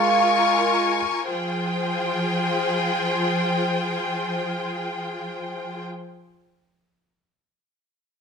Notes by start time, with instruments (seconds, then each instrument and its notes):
Already playing: grand piano G#3 F4, string section F4 A#4 G#5 C#6
1.28 string section F3 F4 G#4 C5 G5